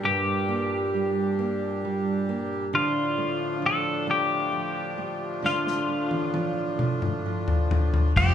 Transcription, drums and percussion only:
5.44 snare soft
5.67 snare soft
6.11 high tom soft
6.34 high tom medium
6.79 mid tom medium
7.02 mid tom medium
7.48 floor tom medium
7.71 floor tom medium
7.94 floor tom medium
8.16 kick loud
8.16 crash medium

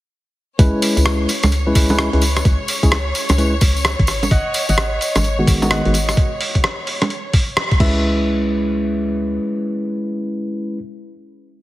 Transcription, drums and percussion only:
0.59 kick loud
0.59 closed hi-hat medium
0.59 tambourine soft
0.82 open hi-hat loud
0.82 tambourine medium
0.97 closed hi-hat medium
0.97 tambourine medium
1.06 cross-stick loud
1.06 tambourine soft
1.29 open hi-hat loud
1.29 tambourine medium
1.43 cross-stick medium
1.43 closed hi-hat medium
1.43 tambourine soft
1.43 high bongo medium
1.52 closed hi-hat medium
1.52 tambourine soft
1.75 kick loud
1.75 open hi-hat loud
1.75 tambourine medium
1.89 tambourine soft
1.89 high bongo medium
1.99 cross-stick loud
1.99 tambourine soft
2.13 closed hi-hat medium
2.22 open hi-hat loud
2.22 tambourine medium
2.36 cross-stick medium
2.36 closed hi-hat soft
2.36 tambourine soft
2.45 kick loud
2.45 closed hi-hat medium
2.45 tambourine soft
2.68 open hi-hat loud
2.68 tambourine loud
2.83 kick medium
2.83 closed hi-hat medium
2.83 tambourine medium
2.91 cross-stick loud
2.91 tambourine soft
3.15 open hi-hat medium
3.15 tambourine medium
3.29 cross-stick medium
3.29 closed hi-hat medium
3.29 tambourine medium
3.29 high bongo medium
3.38 closed hi-hat medium
3.38 tambourine soft
3.61 kick loud
3.61 open hi-hat loud
3.61 tambourine medium
3.77 tambourine medium
3.85 cross-stick loud
3.85 tambourine soft
3.99 kick loud
3.99 closed hi-hat medium
4.07 cross-stick medium
4.07 open hi-hat medium
4.07 tambourine loud
4.23 closed hi-hat soft
4.23 tambourine medium
4.23 high bongo medium
4.31 kick loud
4.31 closed hi-hat medium
4.31 tambourine soft
4.54 open hi-hat loud
4.54 tambourine medium
4.69 closed hi-hat medium
4.69 tambourine medium
4.78 cross-stick loud
4.78 tambourine soft
5.01 open hi-hat medium
5.01 tambourine medium
5.15 cross-stick medium
5.15 closed hi-hat medium
5.15 tambourine medium
5.15 high bongo medium
5.24 closed hi-hat medium
5.24 tambourine soft
5.47 kick loud
5.47 open hi-hat loud
5.47 tambourine medium
5.62 tambourine medium
5.62 high bongo medium
5.71 cross-stick loud
5.71 tambourine soft
5.85 closed hi-hat soft
5.94 open hi-hat medium
5.94 tambourine loud
6.09 cross-stick medium
6.09 closed hi-hat soft
6.09 tambourine medium
6.17 kick loud
6.17 closed hi-hat medium
6.41 open hi-hat loud
6.55 kick medium
6.55 closed hi-hat medium
6.64 cross-stick loud
6.87 open hi-hat medium
7.02 cross-stick medium
7.02 closed hi-hat medium
7.02 high bongo medium
7.10 closed hi-hat medium
7.33 kick loud
7.33 open hi-hat loud
7.57 cross-stick loud
7.71 kick loud
7.71 closed hi-hat medium
7.80 kick loud
7.80 crash medium

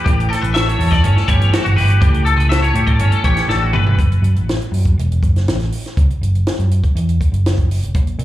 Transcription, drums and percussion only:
0.06 kick loud
0.06 closed hi-hat loud
0.20 closed hi-hat soft
0.33 snare soft
0.33 closed hi-hat medium
0.44 closed hi-hat soft
0.56 snare loud
0.56 closed hi-hat medium
0.69 closed hi-hat soft
0.80 open hi-hat medium
0.92 kick medium
0.92 snare soft
0.92 closed hi-hat soft
1.04 closed hi-hat medium
1.17 snare soft
1.28 kick medium
1.28 closed hi-hat medium
1.41 closed hi-hat soft
1.53 snare loud
1.53 closed hi-hat medium
1.66 closed hi-hat soft
1.78 open hi-hat medium
1.90 closed hi-hat soft
2.02 kick loud
2.02 closed hi-hat medium
2.14 closed hi-hat soft
2.26 closed hi-hat medium
2.40 closed hi-hat soft
2.51 snare loud
2.51 closed hi-hat loud
2.64 closed hi-hat soft
2.75 closed hi-hat medium
2.87 kick medium
2.87 closed hi-hat soft
2.99 closed hi-hat medium
3.12 closed hi-hat soft
3.24 kick medium
3.24 closed hi-hat medium
3.37 snare soft
3.37 closed hi-hat soft
3.50 snare medium
3.73 mid tom medium
3.87 floor tom medium
3.99 kick loud
3.99 closed hi-hat medium
4.12 closed hi-hat soft
4.24 closed hi-hat medium
4.36 closed hi-hat soft
4.49 snare loud
4.49 closed hi-hat medium
4.61 closed hi-hat soft
4.74 open hi-hat medium
4.85 kick medium
4.85 closed hi-hat soft
4.99 closed hi-hat medium
5.12 closed hi-hat soft
5.23 kick medium
5.23 closed hi-hat medium
5.36 snare soft
5.36 closed hi-hat soft
5.48 snare medium
5.48 closed hi-hat medium
5.60 snare soft
5.60 closed hi-hat soft
5.72 open hi-hat medium
5.86 snare soft
5.86 closed hi-hat soft
5.97 kick medium
5.97 closed hi-hat medium
6.10 closed hi-hat soft
6.23 closed hi-hat soft
6.35 closed hi-hat soft
6.47 snare medium
6.47 closed hi-hat medium
6.59 closed hi-hat soft
6.71 closed hi-hat medium
6.84 kick medium
6.84 closed hi-hat soft
6.96 closed hi-hat medium
7.09 closed hi-hat soft
7.21 kick medium
7.21 closed hi-hat medium
7.34 closed hi-hat soft
7.46 snare loud
7.46 closed hi-hat medium
7.58 kick medium
7.58 closed hi-hat soft
7.71 open hi-hat medium
7.83 closed hi-hat soft
7.94 kick loud
7.94 closed hi-hat medium
8.07 closed hi-hat soft
8.19 closed hi-hat medium

